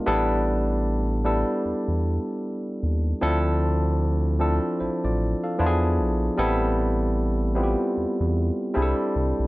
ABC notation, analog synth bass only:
X:1
M:4/4
L:1/16
Q:"Swing 16ths" 1/4=76
K:Am
V:1 name="Analog synth bass" clef=bass
A,,,6- A,,, z E,, E,,2 z3 _E,,2 | D,,6- D,, z A,,, A,,,2 z E,,2 _B,,,2 | A,,,6- A,,, z E,, E,,2 z C,, z C,, B,,, |]